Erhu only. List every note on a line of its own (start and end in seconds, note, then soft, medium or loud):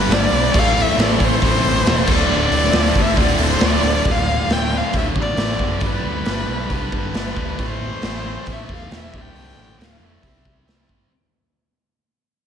0.00 0.14 B4 loud
0.13 0.60 D5 loud
0.59 0.83 F5 loud
0.82 1.04 E5 loud
1.03 1.26 D5 loud
1.24 2.16 C5 loud
2.15 3.03 D5 loud
3.01 3.21 E5 medium
3.23 3.41 D5 medium
3.45 3.67 C5 medium
3.65 4.13 D5 loud
4.11 4.54 F5 loud
4.52 4.79 G5 loud
4.77 4.97 F5 loud
4.98 5.07 E5 medium
5.21 5.88 D5 loud
5.86 6.95 B4 loud
6.97 7.67 B4 medium
7.66 8.54 C5 loud
8.52 8.72 E5 medium
8.73 8.99 F5 medium
8.98 9.23 E5 medium
9.21 9.86 G5 loud
9.84 10.06 F5 medium
10.04 10.91 E5 medium